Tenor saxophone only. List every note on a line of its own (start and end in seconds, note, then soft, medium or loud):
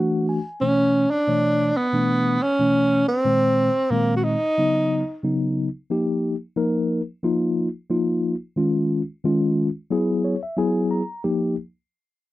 0.61 1.12 C#4 medium
1.11 1.79 D4 loud
1.77 2.44 B3 medium
2.43 3.08 C#4 medium
3.08 3.92 C4 loud
3.91 4.16 A#3 medium
4.16 4.25 F#4 medium
4.24 5.24 D#4 medium